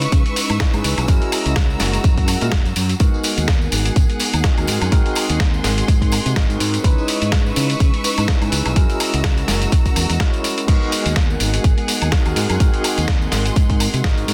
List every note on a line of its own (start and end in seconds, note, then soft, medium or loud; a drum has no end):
0.00 0.57 G#3 medium
0.00 0.58 C#4 medium
0.00 0.58 D#4 medium
0.00 0.58 E4 medium
0.00 0.58 B4 loud
0.00 1.06 B4 medium
0.00 1.06 C#6 medium
0.00 2.96 E6 medium
0.00 closed hi-hat medium
0.00 tambourine soft
0.12 0.21 C#3 loud
0.12 kick loud
0.12 closed hi-hat medium
0.12 tambourine medium
0.12 tambourine soft
0.26 closed hi-hat soft
0.26 tambourine soft
0.36 open hi-hat loud
0.36 tambourine loud
0.36 tambourine medium
0.50 0.64 G#2 medium
0.50 closed hi-hat soft
0.50 tambourine soft
0.50 high woodblock medium
0.60 1.06 G#3 medium
0.60 1.06 C#4 medium
0.60 1.06 D#4 medium
0.60 1.06 E4 medium
0.60 1.06 B4 loud
0.60 kick loud
0.60 snare loud
0.60 closed hi-hat medium
0.60 tambourine soft
0.73 0.81 G#2 loud
0.73 closed hi-hat soft
0.73 tambourine soft
0.73 high woodblock medium
0.84 0.93 C#2 loud
0.84 open hi-hat loud
0.84 tambourine loud
0.84 tambourine medium
0.98 1.05 B1 loud
0.98 closed hi-hat medium
0.98 tambourine soft
0.98 high woodblock medium
1.08 1.17 F#2 loud
1.08 2.39 G#3 loud
1.08 2.39 C#4 medium
1.08 2.39 E4 medium
1.08 2.98 F#4 medium
1.08 2.39 F#4 medium
1.08 2.39 A#4 loud
1.08 2.98 A#5 medium
1.08 kick loud
1.08 closed hi-hat medium
1.08 tambourine medium
1.08 tambourine soft
1.22 closed hi-hat soft
1.22 tambourine soft
1.32 open hi-hat loud
1.32 tambourine medium
1.32 high woodblock medium
1.46 1.74 C#2 medium
1.46 closed hi-hat medium
1.46 tambourine soft
1.56 kick loud
1.56 snare loud
1.56 closed hi-hat medium
1.56 tambourine medium
1.56 tambourine soft
1.70 tambourine soft
1.80 1.97 F#1 medium
1.80 snare medium
1.80 open hi-hat loud
1.80 tambourine medium
1.93 closed hi-hat soft
1.93 tambourine soft
2.04 2.34 F#2 medium
2.04 kick loud
2.04 closed hi-hat medium
2.04 tambourine medium
2.04 tambourine soft
2.18 kick medium
2.18 closed hi-hat soft
2.18 tambourine soft
2.28 open hi-hat loud
2.28 tambourine medium
2.28 high woodblock medium
2.41 2.49 A#2 medium
2.41 2.63 G#3 medium
2.41 2.63 C#4 medium
2.41 2.63 E4 medium
2.41 2.63 F#4 medium
2.41 2.63 A#4 medium
2.41 closed hi-hat soft
2.41 tambourine soft
2.52 2.61 F#1 loud
2.52 kick loud
2.52 snare loud
2.52 closed hi-hat medium
2.65 2.72 F#2 loud
2.65 closed hi-hat soft
2.65 tambourine soft
2.76 2.93 F#2 loud
2.76 open hi-hat loud
2.76 tambourine loud
2.76 tambourine medium
2.89 closed hi-hat medium
2.89 tambourine soft
3.00 3.09 G#2 loud
3.00 4.41 G#3 medium
3.00 4.41 B3 medium
3.00 4.42 D#4 medium
3.00 4.42 F#4 medium
3.00 6.80 G#4 medium
3.00 4.42 A#4 loud
3.00 6.80 F#5 medium
3.00 kick loud
3.00 closed hi-hat medium
3.00 tambourine medium
3.00 tambourine soft
3.14 tambourine soft
3.23 open hi-hat loud
3.23 tambourine medium
3.38 3.66 D#2 medium
3.38 closed hi-hat soft
3.38 tambourine soft
3.48 kick loud
3.48 snare loud
3.48 closed hi-hat medium
3.48 tambourine soft
3.62 tambourine soft
3.72 3.89 G#1 medium
3.72 open hi-hat loud
3.72 tambourine medium
3.85 closed hi-hat medium
3.85 tambourine soft
3.96 4.05 G#1 loud
3.96 kick loud
3.96 closed hi-hat medium
3.96 tambourine soft
3.96 tambourine medium
4.10 closed hi-hat soft
4.10 tambourine soft
4.20 open hi-hat loud
4.20 tambourine medium
4.33 4.48 D#2 medium
4.33 closed hi-hat medium
4.33 tambourine soft
4.33 high woodblock medium
4.44 4.89 G#3 medium
4.44 4.90 C4 medium
4.44 4.90 D#4 medium
4.44 4.90 F#4 medium
4.44 4.90 A#4 loud
4.44 kick loud
4.44 snare loud
4.44 closed hi-hat medium
4.44 tambourine medium
4.44 tambourine soft
4.58 4.65 D#2 loud
4.58 closed hi-hat soft
4.58 tambourine soft
4.58 high woodblock medium
4.67 4.77 G#2 loud
4.67 6.82 C6 medium
4.67 open hi-hat loud
4.67 tambourine loud
4.67 tambourine medium
4.82 4.88 F#2 loud
4.82 closed hi-hat medium
4.82 tambourine soft
4.82 high woodblock medium
4.91 5.01 G#2 loud
4.91 6.33 G#3 medium
4.91 6.33 C4 medium
4.91 6.34 D#4 medium
4.91 6.34 F#4 medium
4.91 6.34 A#4 loud
4.91 kick loud
4.91 closed hi-hat medium
4.91 tambourine medium
4.91 tambourine soft
5.06 closed hi-hat soft
5.06 tambourine soft
5.15 open hi-hat loud
5.15 tambourine medium
5.15 high woodblock medium
5.30 5.58 D#2 medium
5.30 closed hi-hat medium
5.30 tambourine soft
5.40 kick loud
5.40 snare loud
5.40 closed hi-hat medium
5.54 tambourine soft
5.64 5.81 G#1 medium
5.64 snare medium
5.64 open hi-hat loud
5.64 tambourine medium
5.78 closed hi-hat medium
5.78 tambourine soft
5.88 6.18 G#2 medium
5.88 kick loud
5.88 closed hi-hat medium
5.88 tambourine soft
6.02 kick medium
6.02 closed hi-hat soft
6.02 tambourine soft
6.12 open hi-hat loud
6.12 tambourine medium
6.12 high woodblock medium
6.26 6.33 C3 medium
6.26 closed hi-hat medium
6.26 tambourine soft
6.36 6.45 G#1 loud
6.36 6.82 G#3 medium
6.36 6.82 C4 medium
6.36 6.82 D#4 medium
6.36 6.82 F#4 medium
6.36 6.82 A#4 loud
6.36 kick loud
6.36 snare loud
6.36 closed hi-hat medium
6.36 tambourine medium
6.36 tambourine soft
6.50 6.56 G#2 loud
6.50 closed hi-hat soft
6.50 tambourine soft
6.60 6.77 G#2 loud
6.60 open hi-hat loud
6.60 tambourine medium
6.74 closed hi-hat medium
6.74 tambourine soft
6.84 6.93 C#2 loud
6.84 8.25 G#3 loud
6.84 8.26 C#4 medium
6.84 8.26 D#4 medium
6.84 8.26 E4 medium
6.84 8.74 B4 medium
6.84 8.26 B4 loud
6.84 8.74 C#6 medium
6.84 10.64 E6 medium
6.84 kick loud
6.84 closed hi-hat medium
6.84 tambourine soft
6.98 tambourine soft
7.08 open hi-hat loud
7.08 tambourine medium
7.22 7.50 G#2 medium
7.22 closed hi-hat medium
7.22 tambourine soft
7.32 kick loud
7.32 snare loud
7.32 closed hi-hat medium
7.32 tambourine soft
7.46 tambourine soft
7.56 7.73 C#3 medium
7.56 open hi-hat loud
7.56 tambourine medium
7.69 closed hi-hat medium
7.69 tambourine soft
7.80 7.89 C#3 loud
7.80 kick loud
7.80 closed hi-hat medium
7.80 tambourine medium
7.80 tambourine soft
7.94 closed hi-hat soft
7.94 tambourine soft
8.04 open hi-hat loud
8.04 tambourine medium
8.17 8.32 G#2 medium
8.17 closed hi-hat medium
8.17 tambourine soft
8.17 high woodblock medium
8.28 8.74 G#3 medium
8.28 8.74 C#4 medium
8.28 8.74 D#4 medium
8.28 8.74 E4 medium
8.28 8.74 B4 loud
8.28 kick loud
8.28 snare loud
8.28 closed hi-hat medium
8.28 tambourine soft
8.42 8.48 G#2 loud
8.42 closed hi-hat soft
8.42 tambourine soft
8.42 high woodblock medium
8.52 8.61 C#2 loud
8.52 open hi-hat loud
8.52 tambourine medium
8.65 8.73 B1 loud
8.65 closed hi-hat medium
8.65 tambourine soft
8.65 high woodblock medium
8.75 8.85 F#2 loud
8.75 10.17 G#3 loud
8.75 10.17 C#4 medium
8.75 10.18 E4 medium
8.75 10.66 F#4 medium
8.75 10.18 F#4 medium
8.75 10.18 A#4 loud
8.75 10.66 A#5 medium
8.75 kick loud
8.75 closed hi-hat medium
8.75 tambourine soft
8.89 closed hi-hat soft
8.89 tambourine soft
9.00 open hi-hat loud
9.00 tambourine medium
9.00 high woodblock medium
9.14 9.42 C#2 medium
9.14 closed hi-hat medium
9.14 tambourine soft
9.24 kick loud
9.24 snare loud
9.24 closed hi-hat medium
9.24 tambourine medium
9.24 tambourine soft
9.37 closed hi-hat soft
9.37 tambourine soft
9.48 9.65 F#1 medium
9.48 snare medium
9.48 open hi-hat loud
9.48 tambourine medium
9.62 closed hi-hat medium
9.62 tambourine soft
9.72 kick loud
9.72 closed hi-hat medium
9.72 tambourine medium
9.72 tambourine soft
9.85 kick medium
9.85 closed hi-hat soft
9.85 tambourine soft
9.96 10.05 E2 medium
9.96 open hi-hat loud
9.96 tambourine medium
9.96 high woodblock medium
10.10 10.17 E2 medium
10.10 closed hi-hat medium
10.10 tambourine soft
10.20 10.65 G#3 medium
10.20 10.66 C#4 medium
10.20 10.66 E4 medium
10.20 10.66 F#4 medium
10.20 10.66 A#4 loud
10.20 kick loud
10.20 snare loud
10.20 closed hi-hat medium
10.33 closed hi-hat soft
10.33 tambourine soft
10.44 open hi-hat loud
10.44 tambourine medium
10.58 closed hi-hat medium
10.58 tambourine soft
10.67 10.77 G#2 loud
10.67 12.09 G#3 medium
10.67 12.09 B3 medium
10.67 12.10 D#4 medium
10.67 12.10 F#4 medium
10.67 14.34 G#4 medium
10.67 12.10 A#4 loud
10.67 14.34 F#5 medium
10.67 kick loud
10.67 closed hi-hat medium
10.67 crash medium
10.67 tambourine medium
10.67 tambourine soft
10.82 tambourine soft
10.92 open hi-hat loud
10.92 tambourine medium
11.06 11.34 D#2 medium
11.06 closed hi-hat medium
11.06 tambourine soft
11.16 kick loud
11.16 snare loud
11.16 closed hi-hat medium
11.16 tambourine soft
11.30 tambourine soft
11.40 11.57 G#1 medium
11.40 open hi-hat loud
11.40 tambourine loud
11.40 tambourine medium
11.54 closed hi-hat medium
11.54 tambourine soft
11.64 11.73 G#1 loud
11.64 kick loud
11.64 closed hi-hat medium
11.64 tambourine medium
11.64 tambourine soft
11.78 closed hi-hat soft
11.78 tambourine soft
11.88 open hi-hat loud
11.88 tambourine medium
12.02 12.16 D#2 medium
12.02 closed hi-hat medium
12.02 tambourine soft
12.02 high woodblock medium
12.12 12.57 G#3 medium
12.12 12.58 C4 medium
12.12 12.58 D#4 medium
12.12 12.58 F#4 medium
12.12 12.58 A#4 loud
12.12 kick loud
12.12 snare loud
12.12 closed hi-hat medium
12.12 tambourine soft
12.25 12.33 D#2 loud
12.25 closed hi-hat soft
12.25 tambourine soft
12.25 high woodblock medium
12.36 12.45 G#2 loud
12.36 14.34 C6 medium
12.36 open hi-hat loud
12.36 tambourine medium
12.49 12.57 F#2 loud
12.49 closed hi-hat medium
12.49 tambourine soft
12.49 high woodblock medium
12.59 14.01 G#3 medium
12.59 14.02 C4 medium
12.59 14.02 D#4 medium
12.59 14.02 F#4 medium
12.59 14.02 A#4 loud
12.59 kick loud
12.59 closed hi-hat medium
12.59 tambourine soft
12.59 tambourine medium
12.74 closed hi-hat soft
12.74 tambourine soft
12.84 open hi-hat loud
12.84 tambourine medium
12.84 high woodblock medium
12.98 13.26 D#2 medium
12.98 closed hi-hat medium
12.98 tambourine soft
13.08 kick loud
13.08 snare loud
13.08 closed hi-hat medium
13.22 tambourine soft
13.32 13.49 G#1 medium
13.32 snare medium
13.32 open hi-hat loud
13.32 tambourine loud
13.32 tambourine medium
13.46 closed hi-hat medium
13.46 tambourine soft
13.56 13.86 G#2 medium
13.56 kick loud
13.56 closed hi-hat medium
13.56 tambourine medium
13.56 tambourine soft
13.70 kick medium
13.70 closed hi-hat soft
13.70 tambourine soft
13.80 open hi-hat loud
13.80 tambourine loud
13.80 tambourine medium
13.80 high woodblock medium
13.94 14.00 C3 medium
13.94 closed hi-hat medium
13.94 tambourine soft
14.04 14.13 G#1 loud
14.04 14.34 G#3 medium
14.04 14.34 C4 medium
14.04 14.34 D#4 medium
14.04 14.34 F#4 medium
14.04 14.34 A#4 loud
14.04 kick loud
14.04 snare loud
14.04 closed hi-hat medium
14.04 tambourine soft
14.17 14.24 G#2 loud
14.17 closed hi-hat soft
14.17 tambourine soft
14.28 14.34 G#2 loud
14.28 open hi-hat loud
14.28 tambourine loud
14.28 tambourine medium